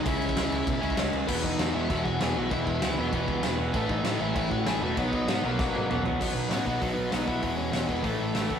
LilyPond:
<<
  \new Staff \with { instrumentName = "Lead electric guitar" } { \time 4/4 \key e \lydian \tempo 4 = 195 <e' e''>2. r4 | <b b'>8 <dis' dis''>4 <e' e''>8 <e' e''>8 <fis' fis''>8 <gis' gis''>8 <fis' fis''>8 | <e' e''>8 <e' e''>4 <b b'>2 r8 | <b b'>8 <dis' dis''>4 <e' e''>8 <e' e''>8 <fis' fis''>8 <gis' gis''>8 <fis' fis''>8 |
<dis' dis''>8 <dis' dis''>4 <ais ais'>2 r8 | \key b \mixolydian <b b'>8 <b b'>8 <cis' cis''>8 <dis' dis''>8 <dis' dis''>8 <b b'>8 <dis' dis''>8 <e' e''>8~ | <e' e''>8 <cis' cis''>8 <cis' cis''>8 <b b'>8 <a a'>4. r8 | }
  \new Staff \with { instrumentName = "Distorted electric guitar" } { \clef bass \time 4/4 \key e \lydian <cis gis cis'>2~ <cis gis cis'>8 <cis gis cis'>8 <cis gis cis'>4 | <e, b, e>4 <e, b, e>8 <e, b, e>8 <e, b, e>4 <e, b, e>8 <e, b, e>8 | <e, b, e>4 <e, b, e>8 <e, b, e>8 <e, b, e>4 <e, b, e>8 <e, b, e>8 | <a, e a>4 <a, e a>8 <a, e a>8 <a, e a>4 <a, e a>8 <a, e a>8 |
<b, fis b>4 <b, fis b>8 <b, fis b>8 <b, fis b>4 <b, fis b>8 <b, fis b>8 | \key b \mixolydian <b, fis b>4 <b, fis b>8 <b, fis b>8 <b, fis b>4 <b, fis b>8 <b, fis b>8 | <e, b, e>4 <e, b, e>8 <e, b, e>8 <a, e a>4 <a, e a>8 <a, e a>8 | }
  \new Staff \with { instrumentName = "Picked electric bass" } { \clef bass \time 4/4 \key e \lydian cis,8 cis,8 cis,8 cis,8 b,8 cis,8 cis,8 cis,8 | e,,4 e,8 e,,8 e,,8 e,,8 e,,8 b,,8 | e,,8 e,,8 cis,8 e,,8 e,,8 cis,8 e,,4 | a,,4 a,8 a,,8 a,,8 a,,8 a,,8 e,,8 |
b,,8 b,,8 gis,8 b,,8 b,,8 gis,8 b,,4 | \key b \mixolydian b,,8 b,,8 a,8 b,,8 b,,8 b,,8 b,,8 b,,8 | e,,8 e,,8 e,,8 e,,8 a,,8 a,,8 a,,8 fis,,8 | }
  \new DrumStaff \with { instrumentName = "Drums" } \drummode { \time 4/4 <cymc bd>8 cymc16 bd16 <cymc sn>8 cymc8 <cymc bd>8 cymc16 bd16 <cymc sn>8 cymc8 | <cymc bd>8 bd8 <cymc sn>4 <cymc bd>8 bd8 <cymc sn>4 | <cymc bd>8 bd8 <cymc sn>4 <cymc bd>8 bd8 <cymc sn>4 | <cymc bd>8 bd8 <cymc sn>4 <cymc bd>8 bd8 <cymc sn>4 |
<cymc bd>8 bd8 <cymc sn>4 <bd sn>8 tommh8 toml8 tomfh8 | <cymc bd>4 <hho sn>8 bd8 <hho bd>4 <hho sn>8 bd8 | <hho bd>4 <hho sn>8 bd8 <hho bd>4 <hho sn>8 bd8 | }
>>